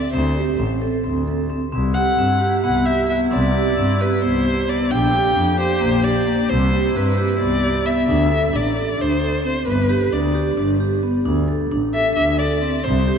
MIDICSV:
0, 0, Header, 1, 5, 480
1, 0, Start_track
1, 0, Tempo, 453858
1, 141, Time_signature, 7, 3, 24, 8
1, 13941, End_track
2, 0, Start_track
2, 0, Title_t, "Violin"
2, 0, Program_c, 0, 40
2, 0, Note_on_c, 0, 74, 80
2, 133, Note_off_c, 0, 74, 0
2, 139, Note_on_c, 0, 72, 74
2, 643, Note_off_c, 0, 72, 0
2, 2049, Note_on_c, 0, 78, 95
2, 2735, Note_off_c, 0, 78, 0
2, 2783, Note_on_c, 0, 78, 82
2, 3021, Note_on_c, 0, 76, 88
2, 3037, Note_off_c, 0, 78, 0
2, 3263, Note_off_c, 0, 76, 0
2, 3271, Note_on_c, 0, 76, 78
2, 3378, Note_off_c, 0, 76, 0
2, 3508, Note_on_c, 0, 74, 91
2, 4240, Note_on_c, 0, 71, 85
2, 4255, Note_off_c, 0, 74, 0
2, 4473, Note_off_c, 0, 71, 0
2, 4482, Note_on_c, 0, 72, 96
2, 4961, Note_on_c, 0, 74, 88
2, 4977, Note_off_c, 0, 72, 0
2, 5195, Note_on_c, 0, 79, 104
2, 5211, Note_off_c, 0, 74, 0
2, 5912, Note_off_c, 0, 79, 0
2, 5924, Note_on_c, 0, 72, 94
2, 6385, Note_on_c, 0, 74, 88
2, 6401, Note_off_c, 0, 72, 0
2, 6869, Note_on_c, 0, 72, 93
2, 6885, Note_off_c, 0, 74, 0
2, 7362, Note_on_c, 0, 71, 74
2, 7378, Note_off_c, 0, 72, 0
2, 7819, Note_off_c, 0, 71, 0
2, 7825, Note_on_c, 0, 74, 97
2, 8312, Note_on_c, 0, 76, 86
2, 8328, Note_off_c, 0, 74, 0
2, 8544, Note_off_c, 0, 76, 0
2, 8550, Note_on_c, 0, 76, 95
2, 9049, Note_on_c, 0, 74, 87
2, 9065, Note_off_c, 0, 76, 0
2, 9532, Note_on_c, 0, 72, 96
2, 9548, Note_off_c, 0, 74, 0
2, 9998, Note_off_c, 0, 72, 0
2, 10004, Note_on_c, 0, 72, 84
2, 10220, Note_off_c, 0, 72, 0
2, 10236, Note_on_c, 0, 71, 87
2, 10715, Note_on_c, 0, 74, 76
2, 10731, Note_off_c, 0, 71, 0
2, 11251, Note_off_c, 0, 74, 0
2, 12626, Note_on_c, 0, 76, 107
2, 12849, Note_off_c, 0, 76, 0
2, 12855, Note_on_c, 0, 76, 95
2, 13083, Note_off_c, 0, 76, 0
2, 13099, Note_on_c, 0, 74, 91
2, 13577, Note_on_c, 0, 72, 88
2, 13593, Note_off_c, 0, 74, 0
2, 13941, Note_off_c, 0, 72, 0
2, 13941, End_track
3, 0, Start_track
3, 0, Title_t, "Vibraphone"
3, 0, Program_c, 1, 11
3, 142, Note_on_c, 1, 60, 86
3, 287, Note_off_c, 1, 60, 0
3, 385, Note_on_c, 1, 67, 69
3, 529, Note_off_c, 1, 67, 0
3, 624, Note_on_c, 1, 60, 75
3, 768, Note_off_c, 1, 60, 0
3, 865, Note_on_c, 1, 69, 72
3, 1009, Note_off_c, 1, 69, 0
3, 1101, Note_on_c, 1, 60, 78
3, 1246, Note_off_c, 1, 60, 0
3, 1349, Note_on_c, 1, 69, 68
3, 1491, Note_off_c, 1, 69, 0
3, 1583, Note_on_c, 1, 60, 66
3, 1727, Note_off_c, 1, 60, 0
3, 1824, Note_on_c, 1, 60, 86
3, 1968, Note_off_c, 1, 60, 0
3, 2069, Note_on_c, 1, 67, 68
3, 2212, Note_off_c, 1, 67, 0
3, 2309, Note_on_c, 1, 60, 74
3, 2452, Note_off_c, 1, 60, 0
3, 2552, Note_on_c, 1, 67, 79
3, 2694, Note_off_c, 1, 67, 0
3, 2789, Note_on_c, 1, 59, 81
3, 2932, Note_off_c, 1, 59, 0
3, 3030, Note_on_c, 1, 67, 73
3, 3173, Note_off_c, 1, 67, 0
3, 3265, Note_on_c, 1, 59, 66
3, 3410, Note_off_c, 1, 59, 0
3, 3506, Note_on_c, 1, 60, 88
3, 3650, Note_off_c, 1, 60, 0
3, 3744, Note_on_c, 1, 67, 73
3, 3889, Note_off_c, 1, 67, 0
3, 3988, Note_on_c, 1, 60, 78
3, 4132, Note_off_c, 1, 60, 0
3, 4224, Note_on_c, 1, 67, 79
3, 4369, Note_off_c, 1, 67, 0
3, 4466, Note_on_c, 1, 59, 82
3, 4611, Note_off_c, 1, 59, 0
3, 4708, Note_on_c, 1, 67, 71
3, 4852, Note_off_c, 1, 67, 0
3, 4948, Note_on_c, 1, 59, 63
3, 5092, Note_off_c, 1, 59, 0
3, 5185, Note_on_c, 1, 62, 81
3, 5331, Note_off_c, 1, 62, 0
3, 5430, Note_on_c, 1, 67, 82
3, 5574, Note_off_c, 1, 67, 0
3, 5665, Note_on_c, 1, 62, 77
3, 5810, Note_off_c, 1, 62, 0
3, 5909, Note_on_c, 1, 67, 86
3, 6053, Note_off_c, 1, 67, 0
3, 6142, Note_on_c, 1, 58, 85
3, 6288, Note_off_c, 1, 58, 0
3, 6387, Note_on_c, 1, 67, 78
3, 6532, Note_off_c, 1, 67, 0
3, 6629, Note_on_c, 1, 58, 68
3, 6774, Note_off_c, 1, 58, 0
3, 6866, Note_on_c, 1, 60, 81
3, 7012, Note_off_c, 1, 60, 0
3, 7105, Note_on_c, 1, 67, 69
3, 7251, Note_off_c, 1, 67, 0
3, 7345, Note_on_c, 1, 60, 68
3, 7490, Note_off_c, 1, 60, 0
3, 7589, Note_on_c, 1, 67, 77
3, 7733, Note_off_c, 1, 67, 0
3, 7829, Note_on_c, 1, 59, 76
3, 7974, Note_off_c, 1, 59, 0
3, 8065, Note_on_c, 1, 67, 71
3, 8211, Note_off_c, 1, 67, 0
3, 8306, Note_on_c, 1, 59, 68
3, 8451, Note_off_c, 1, 59, 0
3, 8548, Note_on_c, 1, 62, 91
3, 8693, Note_off_c, 1, 62, 0
3, 8785, Note_on_c, 1, 69, 73
3, 8931, Note_off_c, 1, 69, 0
3, 9024, Note_on_c, 1, 62, 75
3, 9170, Note_off_c, 1, 62, 0
3, 9262, Note_on_c, 1, 69, 76
3, 9409, Note_off_c, 1, 69, 0
3, 9498, Note_on_c, 1, 62, 84
3, 9646, Note_off_c, 1, 62, 0
3, 9738, Note_on_c, 1, 69, 75
3, 9886, Note_off_c, 1, 69, 0
3, 9982, Note_on_c, 1, 60, 69
3, 10128, Note_off_c, 1, 60, 0
3, 10222, Note_on_c, 1, 59, 82
3, 10368, Note_off_c, 1, 59, 0
3, 10462, Note_on_c, 1, 67, 84
3, 10608, Note_off_c, 1, 67, 0
3, 10706, Note_on_c, 1, 62, 81
3, 10851, Note_off_c, 1, 62, 0
3, 10941, Note_on_c, 1, 67, 80
3, 11088, Note_off_c, 1, 67, 0
3, 11183, Note_on_c, 1, 62, 87
3, 11328, Note_off_c, 1, 62, 0
3, 11424, Note_on_c, 1, 67, 72
3, 11569, Note_off_c, 1, 67, 0
3, 11665, Note_on_c, 1, 59, 74
3, 11810, Note_off_c, 1, 59, 0
3, 11904, Note_on_c, 1, 62, 90
3, 12049, Note_off_c, 1, 62, 0
3, 12143, Note_on_c, 1, 69, 69
3, 12288, Note_off_c, 1, 69, 0
3, 12390, Note_on_c, 1, 62, 83
3, 12533, Note_off_c, 1, 62, 0
3, 12631, Note_on_c, 1, 69, 78
3, 12773, Note_off_c, 1, 69, 0
3, 12867, Note_on_c, 1, 62, 82
3, 13011, Note_off_c, 1, 62, 0
3, 13107, Note_on_c, 1, 69, 85
3, 13251, Note_off_c, 1, 69, 0
3, 13344, Note_on_c, 1, 60, 68
3, 13489, Note_off_c, 1, 60, 0
3, 13587, Note_on_c, 1, 60, 93
3, 13730, Note_off_c, 1, 60, 0
3, 13827, Note_on_c, 1, 67, 77
3, 13941, Note_off_c, 1, 67, 0
3, 13941, End_track
4, 0, Start_track
4, 0, Title_t, "Woodwind section"
4, 0, Program_c, 2, 71
4, 1818, Note_on_c, 2, 47, 62
4, 1818, Note_on_c, 2, 64, 79
4, 1820, Note_on_c, 2, 48, 68
4, 5151, Note_off_c, 2, 47, 0
4, 5151, Note_off_c, 2, 64, 0
4, 5153, Note_off_c, 2, 48, 0
4, 5175, Note_on_c, 2, 58, 69
4, 5177, Note_on_c, 2, 50, 76
4, 5178, Note_on_c, 2, 67, 88
4, 6846, Note_off_c, 2, 58, 0
4, 6847, Note_off_c, 2, 50, 0
4, 6847, Note_off_c, 2, 67, 0
4, 6871, Note_on_c, 2, 48, 76
4, 6871, Note_on_c, 2, 64, 84
4, 6873, Note_on_c, 2, 47, 67
4, 8533, Note_off_c, 2, 48, 0
4, 8533, Note_off_c, 2, 64, 0
4, 8534, Note_off_c, 2, 47, 0
4, 13941, End_track
5, 0, Start_track
5, 0, Title_t, "Double bass"
5, 0, Program_c, 3, 43
5, 142, Note_on_c, 3, 38, 103
5, 513, Note_off_c, 3, 38, 0
5, 623, Note_on_c, 3, 33, 91
5, 808, Note_off_c, 3, 33, 0
5, 1109, Note_on_c, 3, 38, 84
5, 1663, Note_off_c, 3, 38, 0
5, 1822, Note_on_c, 3, 36, 102
5, 2194, Note_off_c, 3, 36, 0
5, 2306, Note_on_c, 3, 43, 91
5, 2491, Note_off_c, 3, 43, 0
5, 2788, Note_on_c, 3, 36, 80
5, 3343, Note_off_c, 3, 36, 0
5, 3506, Note_on_c, 3, 36, 107
5, 3877, Note_off_c, 3, 36, 0
5, 3988, Note_on_c, 3, 43, 97
5, 4173, Note_off_c, 3, 43, 0
5, 4467, Note_on_c, 3, 36, 83
5, 5024, Note_off_c, 3, 36, 0
5, 5189, Note_on_c, 3, 34, 98
5, 5560, Note_off_c, 3, 34, 0
5, 5669, Note_on_c, 3, 41, 98
5, 5854, Note_off_c, 3, 41, 0
5, 6143, Note_on_c, 3, 34, 91
5, 6701, Note_off_c, 3, 34, 0
5, 6866, Note_on_c, 3, 36, 105
5, 7238, Note_off_c, 3, 36, 0
5, 7344, Note_on_c, 3, 43, 100
5, 7531, Note_off_c, 3, 43, 0
5, 7823, Note_on_c, 3, 36, 82
5, 8382, Note_off_c, 3, 36, 0
5, 8539, Note_on_c, 3, 38, 106
5, 8913, Note_off_c, 3, 38, 0
5, 9023, Note_on_c, 3, 33, 88
5, 9396, Note_off_c, 3, 33, 0
5, 9501, Note_on_c, 3, 38, 80
5, 10059, Note_off_c, 3, 38, 0
5, 10218, Note_on_c, 3, 31, 94
5, 10592, Note_off_c, 3, 31, 0
5, 10700, Note_on_c, 3, 38, 90
5, 11074, Note_off_c, 3, 38, 0
5, 11179, Note_on_c, 3, 31, 91
5, 11738, Note_off_c, 3, 31, 0
5, 11898, Note_on_c, 3, 38, 100
5, 12271, Note_off_c, 3, 38, 0
5, 12387, Note_on_c, 3, 33, 82
5, 12757, Note_off_c, 3, 33, 0
5, 12866, Note_on_c, 3, 38, 90
5, 13421, Note_off_c, 3, 38, 0
5, 13584, Note_on_c, 3, 36, 103
5, 13941, Note_off_c, 3, 36, 0
5, 13941, End_track
0, 0, End_of_file